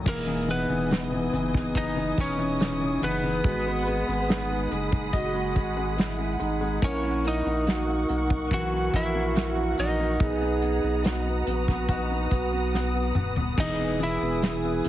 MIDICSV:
0, 0, Header, 1, 7, 480
1, 0, Start_track
1, 0, Tempo, 845070
1, 36, Time_signature, 4, 2, 24, 8
1, 8457, End_track
2, 0, Start_track
2, 0, Title_t, "String section"
2, 0, Program_c, 0, 48
2, 32, Note_on_c, 0, 75, 62
2, 32, Note_on_c, 0, 80, 62
2, 32, Note_on_c, 0, 87, 78
2, 33, Note_on_c, 0, 68, 72
2, 1935, Note_off_c, 0, 75, 0
2, 1935, Note_off_c, 0, 80, 0
2, 1957, Note_on_c, 0, 78, 67
2, 1958, Note_on_c, 0, 83, 64
2, 3851, Note_off_c, 0, 87, 0
2, 3852, Note_off_c, 0, 68, 0
2, 3858, Note_off_c, 0, 83, 0
2, 3871, Note_on_c, 0, 70, 74
2, 3875, Note_on_c, 0, 85, 70
2, 5774, Note_off_c, 0, 70, 0
2, 5776, Note_off_c, 0, 85, 0
2, 5792, Note_on_c, 0, 71, 68
2, 5793, Note_on_c, 0, 87, 75
2, 5795, Note_on_c, 0, 82, 68
2, 7694, Note_off_c, 0, 78, 0
2, 7695, Note_off_c, 0, 71, 0
2, 7696, Note_off_c, 0, 82, 0
2, 7712, Note_on_c, 0, 71, 66
2, 7713, Note_on_c, 0, 59, 73
2, 7713, Note_on_c, 0, 80, 67
2, 8457, Note_off_c, 0, 59, 0
2, 8457, Note_off_c, 0, 71, 0
2, 8457, Note_off_c, 0, 80, 0
2, 8457, Note_off_c, 0, 87, 0
2, 8457, End_track
3, 0, Start_track
3, 0, Title_t, "Lead electric guitar"
3, 0, Program_c, 1, 29
3, 50, Note_on_c, 1, 70, 85
3, 53, Note_on_c, 1, 58, 66
3, 268, Note_off_c, 1, 58, 0
3, 286, Note_off_c, 1, 70, 0
3, 288, Note_on_c, 1, 71, 85
3, 294, Note_on_c, 1, 59, 66
3, 982, Note_off_c, 1, 59, 0
3, 1006, Note_on_c, 1, 63, 80
3, 1009, Note_on_c, 1, 75, 86
3, 1024, Note_off_c, 1, 71, 0
3, 1225, Note_off_c, 1, 63, 0
3, 1249, Note_off_c, 1, 75, 0
3, 1252, Note_on_c, 1, 61, 72
3, 1255, Note_on_c, 1, 73, 83
3, 1702, Note_off_c, 1, 61, 0
3, 1725, Note_off_c, 1, 73, 0
3, 1727, Note_on_c, 1, 71, 81
3, 1729, Note_on_c, 1, 59, 66
3, 2659, Note_off_c, 1, 71, 0
3, 2660, Note_off_c, 1, 59, 0
3, 3887, Note_on_c, 1, 61, 64
3, 3892, Note_on_c, 1, 73, 82
3, 4106, Note_off_c, 1, 61, 0
3, 4130, Note_off_c, 1, 73, 0
3, 4133, Note_on_c, 1, 63, 75
3, 4134, Note_on_c, 1, 75, 78
3, 4821, Note_off_c, 1, 75, 0
3, 4822, Note_off_c, 1, 63, 0
3, 4850, Note_on_c, 1, 66, 76
3, 4851, Note_on_c, 1, 78, 92
3, 5067, Note_off_c, 1, 66, 0
3, 5088, Note_on_c, 1, 64, 82
3, 5088, Note_on_c, 1, 76, 96
3, 5089, Note_off_c, 1, 78, 0
3, 5539, Note_off_c, 1, 64, 0
3, 5563, Note_off_c, 1, 76, 0
3, 5565, Note_on_c, 1, 75, 87
3, 5569, Note_on_c, 1, 63, 66
3, 6498, Note_off_c, 1, 75, 0
3, 6500, Note_off_c, 1, 63, 0
3, 7724, Note_on_c, 1, 63, 71
3, 7725, Note_on_c, 1, 75, 79
3, 7943, Note_off_c, 1, 75, 0
3, 7944, Note_off_c, 1, 63, 0
3, 7969, Note_on_c, 1, 64, 62
3, 7972, Note_on_c, 1, 76, 75
3, 8457, Note_off_c, 1, 64, 0
3, 8457, Note_off_c, 1, 76, 0
3, 8457, End_track
4, 0, Start_track
4, 0, Title_t, "French horn section"
4, 0, Program_c, 2, 60
4, 34, Note_on_c, 2, 63, 80
4, 1932, Note_off_c, 2, 63, 0
4, 1953, Note_on_c, 2, 66, 92
4, 2281, Note_off_c, 2, 66, 0
4, 2434, Note_on_c, 2, 63, 81
4, 2892, Note_off_c, 2, 63, 0
4, 2914, Note_on_c, 2, 66, 96
4, 3372, Note_off_c, 2, 66, 0
4, 3394, Note_on_c, 2, 64, 89
4, 3633, Note_on_c, 2, 63, 85
4, 3635, Note_off_c, 2, 64, 0
4, 3858, Note_off_c, 2, 63, 0
4, 3873, Note_on_c, 2, 64, 99
4, 4332, Note_off_c, 2, 64, 0
4, 4357, Note_on_c, 2, 66, 88
4, 4683, Note_off_c, 2, 66, 0
4, 4837, Note_on_c, 2, 66, 109
4, 5774, Note_off_c, 2, 66, 0
4, 5794, Note_on_c, 2, 68, 106
4, 6274, Note_on_c, 2, 66, 91
4, 6275, Note_off_c, 2, 68, 0
4, 6755, Note_off_c, 2, 66, 0
4, 6757, Note_on_c, 2, 63, 91
4, 6997, Note_off_c, 2, 63, 0
4, 6997, Note_on_c, 2, 66, 91
4, 7476, Note_off_c, 2, 66, 0
4, 7714, Note_on_c, 2, 68, 107
4, 8457, Note_off_c, 2, 68, 0
4, 8457, End_track
5, 0, Start_track
5, 0, Title_t, "Grand piano"
5, 0, Program_c, 3, 0
5, 0, Control_c, 3, 64, 127
5, 31, Note_on_c, 3, 52, 59
5, 44, Control_c, 3, 64, 0
5, 144, Note_off_c, 3, 52, 0
5, 153, Control_c, 3, 64, 127
5, 153, Note_on_c, 3, 52, 52
5, 266, Note_off_c, 3, 52, 0
5, 274, Note_on_c, 3, 52, 51
5, 386, Note_off_c, 3, 52, 0
5, 394, Note_on_c, 3, 52, 54
5, 507, Note_off_c, 3, 52, 0
5, 516, Note_on_c, 3, 52, 51
5, 627, Note_off_c, 3, 52, 0
5, 635, Note_on_c, 3, 52, 51
5, 747, Note_off_c, 3, 52, 0
5, 755, Note_on_c, 3, 52, 54
5, 867, Note_off_c, 3, 52, 0
5, 875, Note_on_c, 3, 52, 45
5, 995, Note_on_c, 3, 59, 64
5, 1108, Note_off_c, 3, 52, 0
5, 1116, Note_on_c, 3, 52, 54
5, 1229, Note_off_c, 3, 52, 0
5, 1238, Note_on_c, 3, 52, 56
5, 1347, Note_off_c, 3, 52, 0
5, 1355, Note_on_c, 3, 52, 56
5, 1467, Note_off_c, 3, 52, 0
5, 1476, Note_on_c, 3, 52, 56
5, 1586, Note_off_c, 3, 52, 0
5, 1595, Note_on_c, 3, 52, 53
5, 1705, Note_off_c, 3, 52, 0
5, 1713, Note_on_c, 3, 52, 53
5, 1828, Note_off_c, 3, 52, 0
5, 1837, Note_on_c, 3, 52, 55
5, 1933, Note_off_c, 3, 59, 0
5, 1953, Note_off_c, 3, 52, 0
5, 1955, Note_on_c, 3, 56, 64
5, 1963, Control_c, 3, 64, 0
5, 2070, Note_off_c, 3, 56, 0
5, 2075, Control_c, 3, 64, 127
5, 2079, Note_on_c, 3, 56, 57
5, 2190, Note_off_c, 3, 56, 0
5, 2198, Note_on_c, 3, 56, 55
5, 2309, Note_off_c, 3, 56, 0
5, 2317, Note_on_c, 3, 56, 50
5, 2428, Note_off_c, 3, 56, 0
5, 2436, Note_on_c, 3, 56, 52
5, 2550, Note_off_c, 3, 56, 0
5, 2559, Note_on_c, 3, 56, 52
5, 2667, Note_off_c, 3, 56, 0
5, 2676, Note_on_c, 3, 56, 52
5, 2784, Note_off_c, 3, 56, 0
5, 2793, Note_on_c, 3, 56, 49
5, 2914, Note_on_c, 3, 75, 74
5, 3023, Note_off_c, 3, 56, 0
5, 3032, Note_on_c, 3, 56, 52
5, 3145, Note_off_c, 3, 56, 0
5, 3154, Note_on_c, 3, 56, 61
5, 3267, Note_off_c, 3, 56, 0
5, 3276, Note_on_c, 3, 56, 57
5, 3384, Note_off_c, 3, 56, 0
5, 3392, Note_on_c, 3, 56, 54
5, 3505, Note_off_c, 3, 56, 0
5, 3513, Note_on_c, 3, 56, 57
5, 3624, Note_off_c, 3, 56, 0
5, 3632, Note_on_c, 3, 56, 55
5, 3745, Note_off_c, 3, 56, 0
5, 3753, Note_on_c, 3, 56, 59
5, 3852, Note_off_c, 3, 75, 0
5, 3871, Note_off_c, 3, 56, 0
5, 3874, Note_on_c, 3, 58, 70
5, 3883, Control_c, 3, 64, 0
5, 3979, Control_c, 3, 64, 127
5, 3987, Note_off_c, 3, 58, 0
5, 3995, Note_on_c, 3, 58, 56
5, 4108, Note_off_c, 3, 58, 0
5, 4117, Note_on_c, 3, 58, 58
5, 4231, Note_off_c, 3, 58, 0
5, 4240, Note_on_c, 3, 58, 57
5, 4345, Note_off_c, 3, 58, 0
5, 4353, Note_on_c, 3, 58, 57
5, 4466, Note_off_c, 3, 58, 0
5, 4475, Note_on_c, 3, 58, 52
5, 4587, Note_off_c, 3, 58, 0
5, 4596, Note_on_c, 3, 58, 55
5, 4708, Note_off_c, 3, 58, 0
5, 4716, Note_on_c, 3, 58, 49
5, 4837, Note_on_c, 3, 52, 72
5, 4946, Note_off_c, 3, 58, 0
5, 4954, Note_on_c, 3, 58, 55
5, 5067, Note_off_c, 3, 58, 0
5, 5076, Note_on_c, 3, 58, 53
5, 5188, Note_off_c, 3, 58, 0
5, 5196, Note_on_c, 3, 58, 56
5, 5306, Note_off_c, 3, 58, 0
5, 5314, Note_on_c, 3, 58, 54
5, 5427, Note_off_c, 3, 58, 0
5, 5436, Note_on_c, 3, 58, 56
5, 5548, Note_off_c, 3, 58, 0
5, 5557, Note_on_c, 3, 58, 54
5, 5668, Note_off_c, 3, 58, 0
5, 5677, Note_on_c, 3, 58, 56
5, 5773, Note_off_c, 3, 52, 0
5, 5793, Note_off_c, 3, 58, 0
5, 5793, Note_on_c, 3, 59, 64
5, 5803, Control_c, 3, 64, 0
5, 5906, Note_off_c, 3, 59, 0
5, 5914, Note_on_c, 3, 59, 56
5, 5917, Control_c, 3, 64, 127
5, 6026, Note_off_c, 3, 59, 0
5, 6034, Note_on_c, 3, 59, 55
5, 6146, Note_off_c, 3, 59, 0
5, 6154, Note_on_c, 3, 59, 55
5, 6263, Note_off_c, 3, 59, 0
5, 6272, Note_on_c, 3, 59, 52
5, 6387, Note_off_c, 3, 59, 0
5, 6395, Note_on_c, 3, 59, 52
5, 6504, Note_off_c, 3, 59, 0
5, 6513, Note_on_c, 3, 59, 54
5, 6626, Note_off_c, 3, 59, 0
5, 6635, Note_on_c, 3, 59, 46
5, 6754, Note_on_c, 3, 66, 66
5, 6867, Note_off_c, 3, 59, 0
5, 6876, Note_on_c, 3, 59, 51
5, 6984, Note_off_c, 3, 59, 0
5, 6993, Note_on_c, 3, 59, 55
5, 7104, Note_off_c, 3, 59, 0
5, 7113, Note_on_c, 3, 59, 54
5, 7227, Note_off_c, 3, 59, 0
5, 7235, Note_on_c, 3, 59, 49
5, 7344, Note_off_c, 3, 59, 0
5, 7353, Note_on_c, 3, 59, 48
5, 7467, Note_off_c, 3, 59, 0
5, 7476, Note_on_c, 3, 59, 52
5, 7584, Note_off_c, 3, 59, 0
5, 7593, Note_on_c, 3, 59, 53
5, 7692, Note_off_c, 3, 66, 0
5, 7711, Note_off_c, 3, 59, 0
5, 7711, Note_on_c, 3, 52, 59
5, 7722, Control_c, 3, 64, 0
5, 7821, Control_c, 3, 64, 127
5, 7834, Note_on_c, 3, 59, 51
5, 7942, Note_off_c, 3, 52, 0
5, 7950, Note_on_c, 3, 52, 53
5, 8065, Note_off_c, 3, 59, 0
5, 8074, Note_on_c, 3, 59, 53
5, 8186, Note_off_c, 3, 52, 0
5, 8195, Note_on_c, 3, 52, 51
5, 8305, Note_off_c, 3, 59, 0
5, 8313, Note_on_c, 3, 59, 48
5, 8428, Note_off_c, 3, 52, 0
5, 8436, Note_on_c, 3, 52, 50
5, 8457, Note_off_c, 3, 52, 0
5, 8457, Note_off_c, 3, 59, 0
5, 8457, End_track
6, 0, Start_track
6, 0, Title_t, "Sub bass"
6, 0, Program_c, 4, 38
6, 35, Note_on_c, 4, 28, 106
6, 373, Note_off_c, 4, 28, 0
6, 396, Note_on_c, 4, 28, 98
6, 733, Note_off_c, 4, 28, 0
6, 755, Note_on_c, 4, 30, 91
6, 1213, Note_off_c, 4, 30, 0
6, 1238, Note_on_c, 4, 28, 96
6, 1694, Note_off_c, 4, 28, 0
6, 1717, Note_on_c, 4, 30, 97
6, 1939, Note_off_c, 4, 30, 0
6, 1956, Note_on_c, 4, 32, 102
6, 2293, Note_off_c, 4, 32, 0
6, 2317, Note_on_c, 4, 32, 96
6, 2654, Note_off_c, 4, 32, 0
6, 2676, Note_on_c, 4, 30, 95
6, 3157, Note_on_c, 4, 32, 99
6, 3166, Note_off_c, 4, 30, 0
6, 3614, Note_off_c, 4, 32, 0
6, 3638, Note_on_c, 4, 32, 88
6, 3860, Note_off_c, 4, 32, 0
6, 3876, Note_on_c, 4, 34, 102
6, 4213, Note_off_c, 4, 34, 0
6, 4235, Note_on_c, 4, 34, 89
6, 4573, Note_off_c, 4, 34, 0
6, 4596, Note_on_c, 4, 35, 86
6, 5053, Note_off_c, 4, 35, 0
6, 5077, Note_on_c, 4, 34, 96
6, 5534, Note_off_c, 4, 34, 0
6, 5557, Note_on_c, 4, 34, 93
6, 5780, Note_off_c, 4, 34, 0
6, 5795, Note_on_c, 4, 35, 107
6, 6133, Note_off_c, 4, 35, 0
6, 6153, Note_on_c, 4, 35, 97
6, 6492, Note_off_c, 4, 35, 0
6, 6513, Note_on_c, 4, 34, 95
6, 6972, Note_off_c, 4, 34, 0
6, 6995, Note_on_c, 4, 35, 95
6, 7453, Note_off_c, 4, 35, 0
6, 7473, Note_on_c, 4, 27, 86
6, 7697, Note_off_c, 4, 27, 0
6, 7712, Note_on_c, 4, 28, 99
6, 8051, Note_off_c, 4, 28, 0
6, 8074, Note_on_c, 4, 28, 101
6, 8412, Note_off_c, 4, 28, 0
6, 8436, Note_on_c, 4, 30, 96
6, 8457, Note_off_c, 4, 30, 0
6, 8457, End_track
7, 0, Start_track
7, 0, Title_t, "Drums"
7, 34, Note_on_c, 9, 49, 95
7, 35, Note_on_c, 9, 36, 115
7, 91, Note_off_c, 9, 49, 0
7, 92, Note_off_c, 9, 36, 0
7, 276, Note_on_c, 9, 42, 68
7, 333, Note_off_c, 9, 42, 0
7, 518, Note_on_c, 9, 42, 78
7, 524, Note_on_c, 9, 38, 102
7, 574, Note_off_c, 9, 42, 0
7, 581, Note_off_c, 9, 38, 0
7, 759, Note_on_c, 9, 42, 75
7, 815, Note_off_c, 9, 42, 0
7, 877, Note_on_c, 9, 36, 85
7, 884, Note_on_c, 9, 38, 36
7, 934, Note_off_c, 9, 36, 0
7, 941, Note_off_c, 9, 38, 0
7, 995, Note_on_c, 9, 36, 86
7, 995, Note_on_c, 9, 42, 86
7, 1051, Note_off_c, 9, 36, 0
7, 1052, Note_off_c, 9, 42, 0
7, 1237, Note_on_c, 9, 36, 82
7, 1237, Note_on_c, 9, 42, 74
7, 1293, Note_off_c, 9, 42, 0
7, 1294, Note_off_c, 9, 36, 0
7, 1477, Note_on_c, 9, 42, 97
7, 1484, Note_on_c, 9, 38, 103
7, 1534, Note_off_c, 9, 42, 0
7, 1541, Note_off_c, 9, 38, 0
7, 1716, Note_on_c, 9, 42, 61
7, 1773, Note_off_c, 9, 42, 0
7, 1956, Note_on_c, 9, 36, 114
7, 1956, Note_on_c, 9, 42, 77
7, 2013, Note_off_c, 9, 36, 0
7, 2013, Note_off_c, 9, 42, 0
7, 2195, Note_on_c, 9, 42, 64
7, 2252, Note_off_c, 9, 42, 0
7, 2436, Note_on_c, 9, 42, 83
7, 2443, Note_on_c, 9, 38, 95
7, 2493, Note_off_c, 9, 42, 0
7, 2500, Note_off_c, 9, 38, 0
7, 2677, Note_on_c, 9, 42, 72
7, 2734, Note_off_c, 9, 42, 0
7, 2797, Note_on_c, 9, 36, 90
7, 2854, Note_off_c, 9, 36, 0
7, 2915, Note_on_c, 9, 36, 90
7, 2916, Note_on_c, 9, 42, 93
7, 2972, Note_off_c, 9, 36, 0
7, 2973, Note_off_c, 9, 42, 0
7, 3156, Note_on_c, 9, 42, 74
7, 3158, Note_on_c, 9, 36, 82
7, 3213, Note_off_c, 9, 42, 0
7, 3214, Note_off_c, 9, 36, 0
7, 3398, Note_on_c, 9, 42, 101
7, 3405, Note_on_c, 9, 38, 110
7, 3455, Note_off_c, 9, 42, 0
7, 3461, Note_off_c, 9, 38, 0
7, 3636, Note_on_c, 9, 42, 62
7, 3692, Note_off_c, 9, 42, 0
7, 3876, Note_on_c, 9, 36, 116
7, 3876, Note_on_c, 9, 42, 84
7, 3932, Note_off_c, 9, 36, 0
7, 3933, Note_off_c, 9, 42, 0
7, 4114, Note_on_c, 9, 42, 69
7, 4171, Note_off_c, 9, 42, 0
7, 4357, Note_on_c, 9, 42, 78
7, 4363, Note_on_c, 9, 38, 96
7, 4413, Note_off_c, 9, 42, 0
7, 4420, Note_off_c, 9, 38, 0
7, 4596, Note_on_c, 9, 42, 80
7, 4653, Note_off_c, 9, 42, 0
7, 4716, Note_on_c, 9, 36, 94
7, 4773, Note_off_c, 9, 36, 0
7, 4834, Note_on_c, 9, 36, 88
7, 4834, Note_on_c, 9, 42, 87
7, 4890, Note_off_c, 9, 36, 0
7, 4890, Note_off_c, 9, 42, 0
7, 5074, Note_on_c, 9, 42, 76
7, 5076, Note_on_c, 9, 36, 89
7, 5131, Note_off_c, 9, 42, 0
7, 5133, Note_off_c, 9, 36, 0
7, 5316, Note_on_c, 9, 42, 95
7, 5323, Note_on_c, 9, 38, 107
7, 5373, Note_off_c, 9, 42, 0
7, 5379, Note_off_c, 9, 38, 0
7, 5553, Note_on_c, 9, 42, 60
7, 5610, Note_off_c, 9, 42, 0
7, 5793, Note_on_c, 9, 42, 85
7, 5795, Note_on_c, 9, 36, 120
7, 5850, Note_off_c, 9, 42, 0
7, 5852, Note_off_c, 9, 36, 0
7, 6032, Note_on_c, 9, 42, 68
7, 6089, Note_off_c, 9, 42, 0
7, 6273, Note_on_c, 9, 42, 80
7, 6280, Note_on_c, 9, 38, 100
7, 6330, Note_off_c, 9, 42, 0
7, 6336, Note_off_c, 9, 38, 0
7, 6514, Note_on_c, 9, 42, 75
7, 6571, Note_off_c, 9, 42, 0
7, 6635, Note_on_c, 9, 36, 89
7, 6640, Note_on_c, 9, 38, 37
7, 6692, Note_off_c, 9, 36, 0
7, 6697, Note_off_c, 9, 38, 0
7, 6751, Note_on_c, 9, 42, 84
7, 6752, Note_on_c, 9, 36, 93
7, 6807, Note_off_c, 9, 42, 0
7, 6809, Note_off_c, 9, 36, 0
7, 6991, Note_on_c, 9, 42, 74
7, 6994, Note_on_c, 9, 36, 80
7, 7047, Note_off_c, 9, 42, 0
7, 7051, Note_off_c, 9, 36, 0
7, 7238, Note_on_c, 9, 38, 56
7, 7295, Note_off_c, 9, 38, 0
7, 7469, Note_on_c, 9, 45, 82
7, 7526, Note_off_c, 9, 45, 0
7, 7590, Note_on_c, 9, 43, 91
7, 7646, Note_off_c, 9, 43, 0
7, 7710, Note_on_c, 9, 57, 75
7, 7712, Note_on_c, 9, 36, 113
7, 7767, Note_off_c, 9, 57, 0
7, 7769, Note_off_c, 9, 36, 0
7, 7950, Note_on_c, 9, 42, 66
7, 8007, Note_off_c, 9, 42, 0
7, 8191, Note_on_c, 9, 42, 81
7, 8198, Note_on_c, 9, 38, 101
7, 8248, Note_off_c, 9, 42, 0
7, 8254, Note_off_c, 9, 38, 0
7, 8431, Note_on_c, 9, 42, 74
7, 8457, Note_off_c, 9, 42, 0
7, 8457, End_track
0, 0, End_of_file